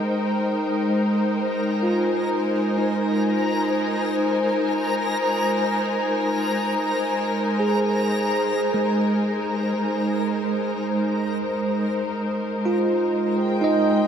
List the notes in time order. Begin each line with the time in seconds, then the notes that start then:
Already playing: G#3 D#4 A#4 C5 D#5 G5 A#5
1.71 G#5
1.83 F4
2.78 D#4
7.60 G#4
8.74 G#3
11.02 G#3
12.65 F4
13.37 G5
13.61 D#4 D#5